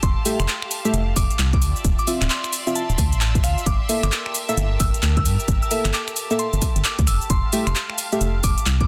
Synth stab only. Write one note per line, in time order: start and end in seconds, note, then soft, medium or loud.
0.25 0.38 A3 medium
0.25 0.38 G4 medium
0.25 0.38 E5 loud
0.85 1.00 A3 medium
0.85 1.00 G4 medium
0.85 1.00 E5 loud
2.07 2.25 C4 medium
2.07 2.25 F4 medium
2.07 2.25 E5 medium
2.67 2.82 C4 medium
2.67 2.82 F4 medium
2.67 2.82 E5 loud
3.89 4.02 A#3 medium
3.89 4.02 A4 medium
3.89 4.02 E5 loud
4.49 4.64 A#3 medium
4.49 4.64 A4 medium
4.49 4.64 E5 loud
5.71 5.89 A#3 medium
5.71 5.89 A4 medium
5.71 5.89 E5 medium
6.31 6.45 A#3 medium
6.31 6.45 A4 medium
6.31 6.45 E5 loud
7.53 7.66 A3 medium
7.53 7.66 G4 medium
7.53 7.66 E5 loud
8.12 8.27 A3 medium
8.12 8.27 G4 medium
8.12 8.27 E5 loud